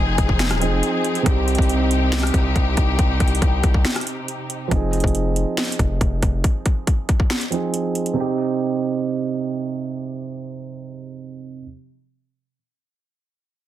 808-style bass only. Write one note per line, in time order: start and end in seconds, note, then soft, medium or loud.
0.00 0.17 F1 loud
0.18 0.52 F1 loud
0.51 0.68 D#1 loud
0.67 0.82 F1 loud
1.26 1.57 C2 loud
1.58 2.31 C2 loud
2.34 2.55 C2 loud
2.56 2.76 C2 loud
2.77 2.98 C2 loud
2.99 3.19 C2 loud
3.20 3.41 C2 loud
3.42 3.63 C2 loud
3.64 3.85 C2 loud
4.71 5.03 F1 loud
5.04 5.45 F1 loud
5.79 6.00 F1 loud
6.01 6.22 F1 loud
6.23 6.43 F1 loud